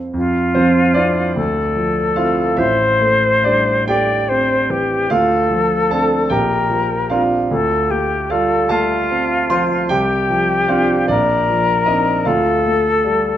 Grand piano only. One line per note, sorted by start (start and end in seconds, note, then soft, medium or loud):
0.00 0.11 F2 soft
0.00 0.15 C4 soft
0.00 0.18 E4 soft
0.00 0.17 F4 soft
0.00 0.17 A4 soft
0.14 1.33 F2 medium
0.55 1.21 F3 soft
0.55 0.94 C4 medium
0.55 0.96 C5 medium
0.94 1.32 C4 soft
0.94 2.13 D4 medium
0.94 1.33 E4 soft
0.94 2.16 D5 medium
1.36 2.54 D2 medium
1.76 2.42 F3 soft
2.16 2.54 C4 soft
2.16 2.54 E4 soft
2.16 2.55 F4 medium
2.16 2.58 F5 medium
2.57 5.06 A1 medium
2.57 3.41 E4 medium
2.57 3.44 E5 medium
3.01 3.71 A3 soft
3.44 3.89 G3 soft
3.44 3.86 D4 medium
3.44 3.88 D5 medium
3.88 4.55 A3 soft
3.88 5.07 G4 medium
3.88 5.10 G5 medium
4.30 4.95 C4 soft
4.70 5.10 E3 soft
5.10 6.27 D2 medium
5.10 5.88 F4 medium
5.10 5.91 F5 medium
5.51 6.15 F3 soft
5.91 6.27 C4 soft
5.91 6.27 D4 soft
5.91 6.28 A4 medium
5.91 6.31 A5 medium
6.30 7.46 A#1 medium
6.30 7.06 G4 medium
6.30 7.09 G5 medium
6.70 7.34 F3 soft
7.10 7.46 C4 soft
7.10 7.47 D4 soft
7.10 8.27 F4 medium
7.10 8.28 F5 medium
7.51 9.86 D2 medium
7.91 8.55 A3 soft
8.30 8.71 G3 soft
8.30 8.68 F4 medium
8.30 8.70 F5 medium
8.69 9.34 A3 soft
8.69 9.46 A4 medium
8.69 9.50 A5 loud
9.11 9.74 C4 soft
9.50 9.90 F3 soft
9.50 9.87 C5 medium
9.50 9.90 C6 loud
9.89 11.05 C2 medium
9.89 10.65 G4 medium
9.89 10.68 G5 loud
10.30 10.93 F3 soft
10.68 11.05 C4 soft
10.68 11.05 D4 soft
10.68 11.06 F4 medium
10.68 11.08 F5 medium
11.08 12.22 A#1 medium
11.08 11.83 D4 medium
11.08 11.87 D5 medium
11.49 12.11 F3 soft
11.86 12.22 C4 soft
11.86 12.22 D4 soft
11.86 12.23 D#4 medium
11.86 12.25 D#5 medium
12.25 13.37 D2 medium
12.25 13.00 F4 medium
12.25 13.04 F5 medium
12.66 13.28 A3 soft
13.04 13.37 G3 soft